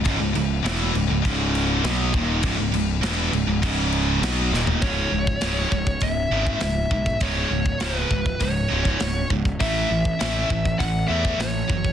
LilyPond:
<<
  \new Staff \with { instrumentName = "Lead electric guitar" } { \time 4/4 \key cis \minor \tempo 4 = 100 r1 | r1 | cis''2 e''4 e''4 | cis''4 b'4 cis''4. r8 |
e''2 fis''8 e''8 cis''4 | }
  \new Staff \with { instrumentName = "Distorted electric guitar" } { \clef bass \time 4/4 \key cis \minor <cis, gis,>16 <cis, gis,>16 <cis, gis,>8 <e, b, e>8 <cis, gis,>16 <cis, gis,>16 <cis, gis, cis>4 <b, fis b>8 <dis, ais, dis>8 | <cis, gis,>16 <cis, gis,>16 <cis, gis,>8 <e, b, e>8 <cis, gis,>16 <cis, gis,>16 <cis, gis, cis>4 <b, fis b>8 <dis, ais, dis>8 | <cis, gis, cis>8 <cis, gis,>8 <cis, gis, cis>8 <cis, gis,>8 <cis, gis,>8 <cis, gis, cis>8 <cis, gis,>8 <cis, gis,>8 | <cis, gis, cis>8 <cis, gis,>8 <cis, gis, cis>8 <cis, gis,>8 <cis, gis,>8 <cis, gis, cis>8 <cis, gis,>8 <cis, gis,>8 |
<a, e a>8 <a, e>8 <a, e a>8 <a, e>8 <a, e>8 <a, e a>8 <a, e>8 <a, e>8 | }
  \new Staff \with { instrumentName = "Distorted electric guitar" } { \clef bass \time 4/4 \key cis \minor <cis, gis,>16 <cis, gis,>16 <cis, gis,>8 <e, b, e>8 <cis, gis,>16 <cis, gis,>16 <cis, gis, cis>4 <b, fis b>8 <dis, ais, dis>8 | <cis, gis,>16 <cis, gis,>16 <cis, gis,>8 <e, b, e>8 <cis, gis,>16 <cis, gis,>16 <cis, gis, cis>4 <b, fis b>8 <dis, ais, dis>8 | <cis, gis, cis>8 <cis, gis,>8 <cis, gis, cis>8 <cis, gis,>8 <cis, gis,>8 <cis, gis, cis>8 <cis, gis,>8 <cis, gis,>8 | <cis, gis, cis>8 <cis, gis,>8 <cis, gis, cis>8 <cis, gis,>8 <cis, gis,>8 <cis, gis, cis>8 <cis, gis,>8 <cis, gis,>8 |
<a, e a>8 <a, e>8 <a, e a>8 <a, e>8 <a, e>8 <a, e a>8 <a, e>8 <a, e>8 | }
  \new Staff \with { instrumentName = "Overdriven electric guitar" } { \clef bass \time 4/4 \key cis \minor <cis, gis,>16 <cis, gis,>16 <cis, gis,>8 <e, b, e>8 <cis, gis,>16 <cis, gis,>16 <cis, gis, cis>4 <b, fis b>8 <dis, ais, dis>8 | <cis, gis,>16 <cis, gis,>16 <cis, gis,>8 <e, b, e>8 <cis, gis,>16 <cis, gis,>16 <cis, gis, cis>4 <b, fis b>8 <dis, ais, dis>8 | r1 | r1 |
r1 | }
  \new Staff \with { instrumentName = "Picked electric bass" } { \clef bass \time 4/4 \key cis \minor cis,,16 cis,,16 cis,,8 e,,8 cis,,16 cis,,16 cis,,4 b,,8 dis,,8 | cis,,16 cis,,16 cis,,8 e,,8 cis,,16 cis,,16 cis,,4 b,,8 dis,,8 | cis,,8 cis,,8 cis,,8 cis,,8 cis,,8 gis,,8 cis,,8 b,,8 | cis,,8 cis,,8 cis,,8 cis,,8 cis,,8 cis,,8 cis,,8 cis,,8 |
a,,8 a,,8 a,,8 a,,8 a,,8 e,8 a,,8 fis,,8 | }
  \new DrumStaff \with { instrumentName = "Drums" } \drummode { \time 4/4 <cymc bd>8 cymc8 <cymc sn>8 cymc8 <cymc bd>8 cymc8 <cymc sn>8 <cymc bd>8 | <cymc bd>8 cymc8 <cymc sn>8 cymc8 <cymc bd>8 cymc8 <cymc sn>8 sn16 tomfh16 | <hho bd>8. bd16 <hho sn>8 bd16 bd16 <hho bd>8. bd16 <hho sn>8 bd16 bd16 | <hho bd>8. bd16 <hho sn>8 bd16 bd16 <hho bd>8. bd16 <hho sn>8 bd16 bd16 |
<hho bd>8. bd16 <hho sn>8 bd16 bd16 <hho bd>8. bd16 <hho sn>8 bd16 bd16 | }
>>